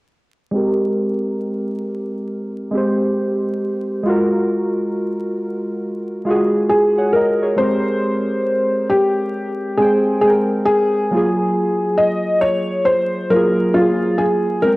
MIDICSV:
0, 0, Header, 1, 3, 480
1, 0, Start_track
1, 0, Key_signature, -4, "major"
1, 0, Tempo, 882353
1, 284, Time_signature, 4, 2, 24, 8
1, 8033, End_track
2, 0, Start_track
2, 0, Title_t, "Felt piano"
2, 0, Program_c, 0, 0
2, 3641, Note_on_c, 0, 68, 82
2, 3877, Note_on_c, 0, 70, 81
2, 3890, Note_off_c, 0, 68, 0
2, 4104, Note_off_c, 0, 70, 0
2, 4123, Note_on_c, 0, 72, 101
2, 4822, Note_off_c, 0, 72, 0
2, 4839, Note_on_c, 0, 67, 91
2, 5317, Note_on_c, 0, 68, 83
2, 5336, Note_off_c, 0, 67, 0
2, 5548, Note_off_c, 0, 68, 0
2, 5556, Note_on_c, 0, 68, 91
2, 5611, Note_off_c, 0, 68, 0
2, 5797, Note_on_c, 0, 68, 104
2, 6515, Note_on_c, 0, 75, 89
2, 6542, Note_off_c, 0, 68, 0
2, 6752, Note_on_c, 0, 73, 89
2, 6767, Note_off_c, 0, 75, 0
2, 6991, Note_on_c, 0, 72, 96
2, 7006, Note_off_c, 0, 73, 0
2, 7237, Note_on_c, 0, 70, 92
2, 7245, Note_off_c, 0, 72, 0
2, 7463, Note_off_c, 0, 70, 0
2, 7475, Note_on_c, 0, 65, 83
2, 7714, Note_on_c, 0, 68, 90
2, 7727, Note_off_c, 0, 65, 0
2, 7942, Note_off_c, 0, 68, 0
2, 7954, Note_on_c, 0, 70, 97
2, 7988, Note_off_c, 0, 70, 0
2, 8033, End_track
3, 0, Start_track
3, 0, Title_t, "Synth keys"
3, 0, Program_c, 1, 88
3, 279, Note_on_c, 1, 56, 68
3, 291, Note_on_c, 1, 60, 66
3, 301, Note_on_c, 1, 67, 67
3, 311, Note_on_c, 1, 70, 74
3, 378, Control_c, 1, 64, 127
3, 1060, Note_off_c, 1, 56, 0
3, 1066, Note_off_c, 1, 60, 0
3, 1071, Note_off_c, 1, 67, 0
3, 1076, Note_off_c, 1, 70, 0
3, 1474, Note_on_c, 1, 56, 69
3, 1485, Note_on_c, 1, 60, 62
3, 1495, Note_on_c, 1, 67, 70
3, 1508, Note_on_c, 1, 72, 81
3, 2076, Note_off_c, 1, 56, 0
3, 2081, Note_off_c, 1, 60, 0
3, 2087, Note_off_c, 1, 67, 0
3, 2093, Note_off_c, 1, 72, 0
3, 2193, Note_on_c, 1, 56, 75
3, 2206, Note_on_c, 1, 65, 68
3, 2212, Control_c, 1, 64, 0
3, 2216, Note_on_c, 1, 66, 72
3, 2227, Note_on_c, 1, 70, 84
3, 2304, Control_c, 1, 64, 127
3, 2977, Note_off_c, 1, 56, 0
3, 2983, Note_off_c, 1, 65, 0
3, 2988, Note_off_c, 1, 66, 0
3, 2994, Note_off_c, 1, 70, 0
3, 3398, Note_on_c, 1, 56, 66
3, 3406, Note_on_c, 1, 65, 65
3, 3418, Note_on_c, 1, 66, 68
3, 3429, Note_on_c, 1, 68, 80
3, 3656, Note_off_c, 1, 68, 0
3, 3795, Note_on_c, 1, 78, 59
3, 3798, Note_on_c, 1, 73, 51
3, 3882, Note_off_c, 1, 78, 0
3, 3884, Note_off_c, 1, 73, 0
3, 3894, Note_on_c, 1, 75, 60
3, 3896, Note_on_c, 1, 70, 54
3, 3998, Note_off_c, 1, 56, 0
3, 4002, Note_off_c, 1, 65, 0
3, 4008, Note_off_c, 1, 66, 0
3, 4028, Note_off_c, 1, 75, 0
3, 4030, Note_off_c, 1, 70, 0
3, 4039, Note_on_c, 1, 73, 58
3, 4040, Note_on_c, 1, 68, 51
3, 4114, Note_on_c, 1, 56, 72
3, 4125, Note_on_c, 1, 60, 63
3, 4131, Control_c, 1, 64, 0
3, 4135, Note_on_c, 1, 67, 60
3, 4147, Note_on_c, 1, 70, 79
3, 4223, Control_c, 1, 64, 127
3, 4263, Note_off_c, 1, 73, 0
3, 4264, Note_off_c, 1, 68, 0
3, 4897, Note_off_c, 1, 56, 0
3, 4903, Note_off_c, 1, 60, 0
3, 4908, Note_off_c, 1, 67, 0
3, 4914, Note_off_c, 1, 70, 0
3, 5319, Note_on_c, 1, 56, 62
3, 5329, Note_on_c, 1, 60, 61
3, 5340, Note_on_c, 1, 79, 69
3, 5353, Note_on_c, 1, 72, 73
3, 5524, Note_off_c, 1, 56, 0
3, 5529, Note_off_c, 1, 60, 0
3, 5535, Note_off_c, 1, 79, 0
3, 5541, Note_off_c, 1, 72, 0
3, 5567, Note_on_c, 1, 56, 59
3, 5580, Note_on_c, 1, 60, 54
3, 5590, Note_on_c, 1, 79, 58
3, 5600, Note_on_c, 1, 70, 72
3, 5971, Note_off_c, 1, 56, 0
3, 5977, Note_off_c, 1, 60, 0
3, 5982, Note_off_c, 1, 79, 0
3, 5987, Note_off_c, 1, 70, 0
3, 6044, Note_on_c, 1, 54, 68
3, 6051, Note_on_c, 1, 58, 65
3, 6052, Control_c, 1, 64, 0
3, 6063, Note_on_c, 1, 65, 61
3, 6074, Note_on_c, 1, 68, 76
3, 6146, Control_c, 1, 64, 127
3, 6822, Note_off_c, 1, 54, 0
3, 6826, Note_off_c, 1, 58, 0
3, 6832, Note_off_c, 1, 65, 0
3, 6837, Note_off_c, 1, 68, 0
3, 7235, Note_on_c, 1, 54, 74
3, 7248, Note_on_c, 1, 58, 67
3, 7259, Note_on_c, 1, 65, 62
3, 7268, Note_on_c, 1, 68, 71
3, 7442, Note_off_c, 1, 54, 0
3, 7449, Note_off_c, 1, 58, 0
3, 7454, Note_off_c, 1, 65, 0
3, 7459, Note_off_c, 1, 68, 0
3, 7482, Note_on_c, 1, 54, 69
3, 7493, Note_on_c, 1, 58, 57
3, 7505, Note_on_c, 1, 65, 58
3, 7513, Note_on_c, 1, 68, 66
3, 7888, Note_off_c, 1, 54, 0
3, 7893, Note_off_c, 1, 58, 0
3, 7900, Note_off_c, 1, 65, 0
3, 7904, Note_off_c, 1, 68, 0
3, 7957, Note_on_c, 1, 56, 68
3, 7968, Note_on_c, 1, 60, 60
3, 7972, Control_c, 1, 64, 0
3, 7979, Note_on_c, 1, 79, 56
3, 7991, Note_on_c, 1, 70, 74
3, 8033, Note_off_c, 1, 56, 0
3, 8033, Note_off_c, 1, 60, 0
3, 8033, Note_off_c, 1, 70, 0
3, 8033, Note_off_c, 1, 79, 0
3, 8033, End_track
0, 0, End_of_file